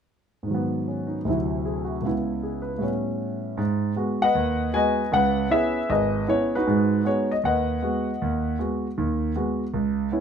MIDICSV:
0, 0, Header, 1, 2, 480
1, 0, Start_track
1, 0, Key_signature, 5, "minor"
1, 0, Tempo, 386100
1, 602, Time_signature, 4, 2, 24, 8
1, 12686, End_track
2, 0, Start_track
2, 0, Title_t, "Grand piano"
2, 0, Program_c, 0, 0
2, 534, Note_on_c, 0, 44, 42
2, 580, Note_on_c, 0, 51, 37
2, 631, Note_on_c, 0, 54, 36
2, 676, Note_on_c, 0, 59, 47
2, 1094, Note_on_c, 0, 61, 36
2, 1329, Note_on_c, 0, 63, 38
2, 1462, Note_off_c, 0, 61, 0
2, 1533, Note_off_c, 0, 44, 0
2, 1550, Note_on_c, 0, 38, 45
2, 1556, Note_off_c, 0, 51, 0
2, 1567, Note_on_c, 0, 48, 43
2, 1575, Note_off_c, 0, 54, 0
2, 1594, Note_on_c, 0, 54, 42
2, 1604, Note_off_c, 0, 59, 0
2, 1610, Note_on_c, 0, 64, 51
2, 1664, Note_off_c, 0, 63, 0
2, 2056, Note_on_c, 0, 68, 38
2, 2294, Note_on_c, 0, 66, 41
2, 2425, Note_off_c, 0, 68, 0
2, 2508, Note_on_c, 0, 37, 42
2, 2523, Note_off_c, 0, 38, 0
2, 2526, Note_on_c, 0, 49, 40
2, 2531, Note_off_c, 0, 48, 0
2, 2545, Note_off_c, 0, 54, 0
2, 2553, Note_off_c, 0, 64, 0
2, 2555, Note_on_c, 0, 59, 38
2, 2572, Note_on_c, 0, 64, 49
2, 2628, Note_off_c, 0, 66, 0
2, 3024, Note_on_c, 0, 68, 35
2, 3255, Note_on_c, 0, 71, 41
2, 3390, Note_off_c, 0, 68, 0
2, 3461, Note_on_c, 0, 45, 40
2, 3482, Note_off_c, 0, 37, 0
2, 3482, Note_on_c, 0, 55, 37
2, 3485, Note_off_c, 0, 59, 0
2, 3491, Note_off_c, 0, 49, 0
2, 3504, Note_on_c, 0, 59, 36
2, 3514, Note_off_c, 0, 64, 0
2, 3522, Note_on_c, 0, 61, 49
2, 3590, Note_off_c, 0, 71, 0
2, 4438, Note_off_c, 0, 45, 0
2, 4443, Note_on_c, 0, 44, 67
2, 4449, Note_off_c, 0, 55, 0
2, 4460, Note_off_c, 0, 59, 0
2, 4469, Note_off_c, 0, 61, 0
2, 4864, Note_off_c, 0, 44, 0
2, 4926, Note_on_c, 0, 56, 49
2, 4926, Note_on_c, 0, 59, 40
2, 4936, Note_on_c, 0, 66, 52
2, 5248, Note_on_c, 0, 78, 93
2, 5263, Note_off_c, 0, 56, 0
2, 5263, Note_off_c, 0, 59, 0
2, 5264, Note_on_c, 0, 75, 60
2, 5268, Note_off_c, 0, 66, 0
2, 5270, Note_on_c, 0, 71, 62
2, 5406, Note_on_c, 0, 39, 68
2, 5825, Note_off_c, 0, 39, 0
2, 5881, Note_on_c, 0, 56, 47
2, 5885, Note_on_c, 0, 59, 43
2, 5889, Note_on_c, 0, 66, 54
2, 5891, Note_on_c, 0, 80, 85
2, 5895, Note_off_c, 0, 71, 0
2, 5900, Note_off_c, 0, 75, 0
2, 5911, Note_off_c, 0, 78, 0
2, 5913, Note_on_c, 0, 71, 63
2, 5919, Note_on_c, 0, 75, 64
2, 6219, Note_off_c, 0, 56, 0
2, 6221, Note_off_c, 0, 59, 0
2, 6223, Note_off_c, 0, 66, 0
2, 6349, Note_off_c, 0, 71, 0
2, 6352, Note_off_c, 0, 75, 0
2, 6364, Note_on_c, 0, 49, 62
2, 6365, Note_on_c, 0, 37, 66
2, 6384, Note_on_c, 0, 78, 91
2, 6385, Note_off_c, 0, 80, 0
2, 6408, Note_on_c, 0, 71, 66
2, 6783, Note_off_c, 0, 37, 0
2, 6783, Note_off_c, 0, 49, 0
2, 6833, Note_on_c, 0, 59, 46
2, 6839, Note_on_c, 0, 61, 42
2, 6846, Note_on_c, 0, 64, 49
2, 6856, Note_off_c, 0, 71, 0
2, 6856, Note_on_c, 0, 76, 85
2, 6871, Note_off_c, 0, 78, 0
2, 6874, Note_on_c, 0, 71, 59
2, 6880, Note_on_c, 0, 68, 63
2, 7174, Note_off_c, 0, 59, 0
2, 7177, Note_off_c, 0, 61, 0
2, 7180, Note_off_c, 0, 64, 0
2, 7327, Note_on_c, 0, 32, 67
2, 7330, Note_on_c, 0, 75, 81
2, 7335, Note_off_c, 0, 68, 0
2, 7337, Note_off_c, 0, 71, 0
2, 7346, Note_off_c, 0, 76, 0
2, 7354, Note_on_c, 0, 68, 59
2, 7356, Note_on_c, 0, 71, 59
2, 7743, Note_off_c, 0, 32, 0
2, 7775, Note_off_c, 0, 75, 0
2, 7805, Note_on_c, 0, 59, 49
2, 7812, Note_on_c, 0, 64, 55
2, 7814, Note_on_c, 0, 61, 44
2, 7825, Note_on_c, 0, 73, 82
2, 8129, Note_off_c, 0, 71, 0
2, 8139, Note_off_c, 0, 59, 0
2, 8141, Note_off_c, 0, 73, 0
2, 8142, Note_off_c, 0, 64, 0
2, 8143, Note_off_c, 0, 61, 0
2, 8148, Note_on_c, 0, 71, 78
2, 8161, Note_on_c, 0, 66, 60
2, 8166, Note_on_c, 0, 63, 59
2, 8249, Note_off_c, 0, 68, 0
2, 8295, Note_on_c, 0, 56, 62
2, 8297, Note_on_c, 0, 44, 62
2, 8706, Note_off_c, 0, 56, 0
2, 8707, Note_off_c, 0, 44, 0
2, 8753, Note_off_c, 0, 66, 0
2, 8762, Note_on_c, 0, 56, 43
2, 8766, Note_on_c, 0, 59, 44
2, 8771, Note_on_c, 0, 66, 51
2, 8785, Note_on_c, 0, 73, 77
2, 8796, Note_off_c, 0, 71, 0
2, 9052, Note_off_c, 0, 63, 0
2, 9094, Note_on_c, 0, 75, 67
2, 9095, Note_off_c, 0, 56, 0
2, 9097, Note_off_c, 0, 59, 0
2, 9100, Note_off_c, 0, 66, 0
2, 9100, Note_off_c, 0, 73, 0
2, 9156, Note_off_c, 0, 75, 0
2, 9244, Note_on_c, 0, 39, 62
2, 9265, Note_on_c, 0, 78, 75
2, 9273, Note_on_c, 0, 75, 55
2, 9274, Note_on_c, 0, 71, 53
2, 9659, Note_off_c, 0, 39, 0
2, 9725, Note_on_c, 0, 56, 47
2, 9731, Note_on_c, 0, 59, 47
2, 9740, Note_on_c, 0, 66, 53
2, 10056, Note_off_c, 0, 56, 0
2, 10058, Note_off_c, 0, 59, 0
2, 10063, Note_off_c, 0, 66, 0
2, 10217, Note_on_c, 0, 39, 67
2, 10624, Note_off_c, 0, 39, 0
2, 10641, Note_off_c, 0, 78, 0
2, 10645, Note_off_c, 0, 71, 0
2, 10645, Note_off_c, 0, 75, 0
2, 10680, Note_on_c, 0, 56, 45
2, 10684, Note_on_c, 0, 59, 41
2, 10694, Note_on_c, 0, 66, 48
2, 11012, Note_off_c, 0, 56, 0
2, 11014, Note_off_c, 0, 59, 0
2, 11019, Note_off_c, 0, 66, 0
2, 11159, Note_on_c, 0, 51, 62
2, 11162, Note_on_c, 0, 39, 70
2, 11574, Note_off_c, 0, 51, 0
2, 11576, Note_off_c, 0, 39, 0
2, 11632, Note_on_c, 0, 56, 45
2, 11637, Note_on_c, 0, 59, 47
2, 11644, Note_on_c, 0, 66, 52
2, 11967, Note_off_c, 0, 56, 0
2, 11970, Note_off_c, 0, 59, 0
2, 11973, Note_off_c, 0, 66, 0
2, 12104, Note_on_c, 0, 37, 63
2, 12525, Note_off_c, 0, 37, 0
2, 12581, Note_on_c, 0, 59, 42
2, 12592, Note_on_c, 0, 61, 44
2, 12592, Note_on_c, 0, 64, 53
2, 12686, Note_off_c, 0, 59, 0
2, 12686, Note_off_c, 0, 61, 0
2, 12686, Note_off_c, 0, 64, 0
2, 12686, End_track
0, 0, End_of_file